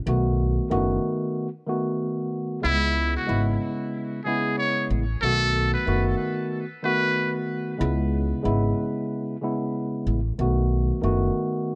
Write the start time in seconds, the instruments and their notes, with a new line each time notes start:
0.06 upright bass B1, tine electric piano D#3 A3 B3 F#4
0.70 upright bass F#1, tine electric piano D#3 A3 B3 F#4
1.67 tine electric piano D#3 A3 B3 F#4
2.61 upright bass C#2, tine electric piano C#3 G#3 B3 E4, muted trumpet E4
3.16 muted trumpet F#4
3.27 upright bass G#1, tine electric piano C#3 G#3 B3 E4
4.25 tine electric piano C#3 G#3 B3 E4, muted trumpet G#4
4.58 muted trumpet C#5
4.90 upright bass A1
5.22 upright bass B1, tine electric piano D#3 A3 B3 F#4, muted trumpet A4
5.74 muted trumpet B4
5.86 upright bass F#1, tine electric piano D#3 A3 B3 F#4
6.83 tine electric piano D#3 A3 B3 F#4, muted trumpet B4
7.78 upright bass C#2, tine electric piano C#3 G#3 B3 E4
8.43 upright bass G#1, tine electric piano C#3 G#3 B3 E4
9.42 tine electric piano C#3 G#3 B3 E4
10.07 upright bass A1
10.39 upright bass B1, tine electric piano D#3 A3 B3 F#4
11.02 upright bass F#1, tine electric piano D#3 A3 B3 F#4